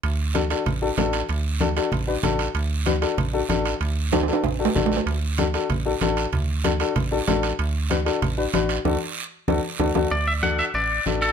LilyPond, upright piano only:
\new Staff \with { instrumentName = "Upright piano" } { \time 4/4 \key d \major \tempo 4 = 190 r4 <d' fis' a'>8 <d' fis' a'>8 r8 <d' fis' a'>8 <d' fis' a'>8 r8 | r4 <d' fis' a'>8 <d' fis' a'>8 r8 <d' fis' b'>8 <d' fis' a'>8 r8 | r4 <d' fis' b'>8 <d' fis' a'>8 r8 <d' fis' a'>8 <d' fis' a'>8 r8 | r4 <d' fis' a'>8 <d' fis' a'>8 r8 <d' fis' a'>8 <d' fis' a'>8 r8 |
r4 <d' fis' a'>8 <d' fis' a'>8 r8 <d' fis' a'>8 <d' fis' a'>8 r8 | r4 <d' fis' a'>8 <d' fis' a'>8 r8 <d' fis' a'>8 <d' fis' a'>8 r8 | r4 <d' fis' b'>8 <d' fis' a'>8 r8 <d' fis' b'>8 <d' fis' b'>8 r8 | <d' fis' a'>8 r4. <d' fis' a'>8 r8 <d' fis' a'>8 <d' fis' a'>8 |
r4 <d' fis' a'>8 r4. <d' fis' a'>8 r8 | }